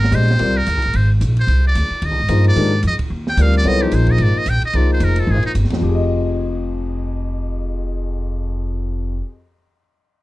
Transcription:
Already playing: G#1 A#4
0.04 snare
0.11 A#1 G#3 D4 G4 C5 D#5, hi-hat pedal, ride
0.22 snare
0.28 snare, ride
0.39 C2 G3 C4 F4 A#4 D5, ride
0.57 A#4
0.66 D#2, hi-hat pedal, ride
0.76 C2
0.82 G#1, ride
0.93 G#1 C5, ride
1.21 A#1, hi-hat pedal, ride
1.37 C5, ride
1.47 C2, ride
1.67 D5
1.75 D2, hi-hat pedal, ride
1.90 muted upright bass stroke
2.02 D#2 D#5, ride
2.11 C2
2.19 G#1
2.28 G2 F3 A#3 D#4 G#4 C5, hi-hat pedal, ride
2.44 D5, ride
2.56 G#2 D#3 G#3 D4 G4 A#4, ride
2.83 F2, hi-hat pedal, ride
2.88 D#5
2.99 muted upright bass stroke, kick, ride
3.10 D#2
3.27 G5, snare
3.37 D2 G3 C4 F4 A#4 D5, hi-hat pedal, ride
3.42 F5
3.54 D5, ride
3.64 C2 F#3 B3 E4 A4 C#5 D#5, ride
3.81 F3 A#3 D#4 G4 G#4 C5
3.91 A#1 C5, hi-hat pedal, ride
4.07 kick, ride
4.11 D#5
4.18 G#1, ride
4.23 D5
4.38 D#5
4.46 A#1 G5, hi-hat pedal, ride
4.62 D#5, muted upright bass stroke, ride
4.73 C2 F3 A#3 D#4 G#4 C5 D5, ride
4.92 C5
5.00 F1, hi-hat pedal, ride
5.04 A#4
5.16 ride
5.20 A4
5.27 G#1
5.31 G#4
5.43 D#4, muted upright bass stroke, ride
5.55 G1, hi-hat pedal, ride
5.65 snare
5.70 F2, muted upright bass stroke, snare, ride
5.76 F3
5.82 F1 G4
5.89 G#4
5.95 D#5

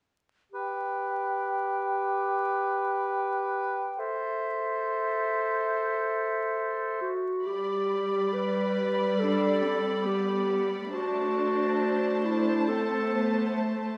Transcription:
0.52 G4 B4 G5
3.98 A4 C5 E5
7.01 F#4
7.46 G3 G4 D5 B5
8.33 B4
9.19 D4 A4
9.64 C4
10.06 B3 G4
10.93 A3 D4 F#4 C5 A5
12.25 E4
12.69 C4 A4
13.14 B3
13.58 A3

